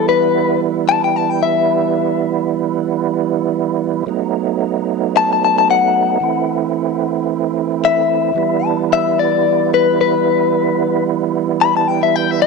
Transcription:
0.00 4.03 E3 medium
0.00 4.04 G3 medium
0.00 4.04 B3 medium
0.00 4.05 E4 medium
0.09 0.59 B4 medium
0.89 1.02 A5 loud
1.04 1.16 G5 medium
1.16 1.30 A5 medium
1.30 1.41 G5 medium
1.43 2.98 E5 medium
4.06 6.18 F#3 medium
4.06 6.18 A3 medium
4.06 6.19 B3 medium
4.06 6.19 D#4 medium
5.17 5.30 A5 loud
5.33 5.43 A5 medium
5.45 5.57 A5 medium
5.58 5.70 A5 medium
5.71 7.27 F#5 medium
6.20 8.32 E3 medium
6.20 8.33 A3 medium
6.20 8.33 C4 medium
6.20 8.33 E4 medium
7.85 8.65 E5 medium
8.34 12.47 E3 medium
8.34 12.47 G3 medium
8.34 12.47 B3 medium
8.34 12.47 E4 medium
8.65 8.91 A5 medium
8.93 9.18 E5 medium
9.19 9.70 D5 medium
9.74 9.99 B4 medium
10.01 11.03 B4 medium
11.61 11.74 B5 medium
11.77 11.88 A5 medium
11.88 12.01 G5 medium
12.03 12.16 E5 medium
12.16 12.31 G5 medium
12.31 12.41 E5 medium
12.42 12.47 E5 medium

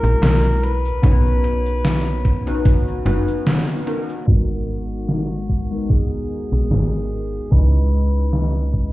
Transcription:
0.00 0.15 A#1 medium
0.00 0.60 G#3 medium
0.00 0.60 C#4 medium
0.00 0.61 E4 medium
0.00 0.61 F#4 medium
0.00 0.61 A#4 loud
0.00 0.65 A#4 loud
0.00 cabasa medium
0.22 0.92 B1 loud
0.22 snare loud
0.22 closed hi-hat medium
0.22 cabasa medium
0.45 cabasa soft
0.63 3.06 B4 loud
0.63 closed hi-hat medium
0.85 cabasa medium
1.02 2.67 B1 medium
1.02 2.41 B3 medium
1.02 2.41 C#4 medium
1.02 2.42 D#4 medium
1.02 2.42 F#4 medium
1.02 2.42 C#5 loud
1.02 kick loud
1.02 closed hi-hat medium
1.02 cabasa soft
1.26 cabasa soft
1.44 closed hi-hat medium
1.66 cabasa medium
1.85 snare loud
1.85 closed hi-hat medium
1.85 cabasa soft
2.07 cabasa soft
2.25 kick medium
2.25 closed hi-hat medium
2.47 3.01 B3 loud
2.47 3.02 C#4 medium
2.47 3.02 D#4 medium
2.47 3.02 F#4 loud
2.47 3.02 B4 loud
2.47 closed hi-hat soft
2.47 cabasa medium
2.65 2.79 F#1 medium
2.65 kick loud
2.65 closed hi-hat medium
2.65 cabasa medium
2.88 cabasa soft
3.05 3.20 F#1 loud
3.05 3.30 B3 loud
3.05 3.30 C#4 medium
3.05 3.30 D#4 medium
3.05 3.30 F#4 medium
3.05 3.30 B4 loud
3.05 closed hi-hat medium
3.28 cabasa medium
3.47 snare loud
3.47 closed hi-hat medium
3.47 cabasa medium
3.69 cabasa soft
3.86 4.23 B3 medium
3.86 4.23 C#4 medium
3.86 4.23 D#4 medium
3.86 4.23 F#4 medium
3.86 4.24 A#4 medium
3.86 closed hi-hat medium
4.09 cabasa medium
4.26 5.91 G#1 medium
4.26 5.65 G#3 medium
4.26 5.66 B3 medium
4.26 5.66 D#4 medium
4.26 5.92 F#4 medium
4.26 5.66 F#4 medium
4.26 5.67 A#4 medium
4.26 kick loud
5.08 snare loud
5.49 kick medium
5.70 7.47 G#3 medium
5.70 7.47 B3 medium
5.70 7.48 D#4 medium
5.70 7.48 F#4 medium
5.70 7.48 A#4 medium
5.90 6.39 D#2 medium
5.90 7.54 G#4 medium
5.90 kick loud
6.52 6.64 B1 medium
6.71 7.41 G#1 medium
6.71 snare loud
7.51 8.93 C#2 medium
7.51 8.90 G#3 medium
7.51 8.90 C#4 medium
7.51 8.90 D#4 medium
7.51 8.91 E4 medium
7.51 8.88 B4 loud
7.51 8.91 D#5 medium
7.51 kick loud
8.33 snare loud
8.74 kick medium

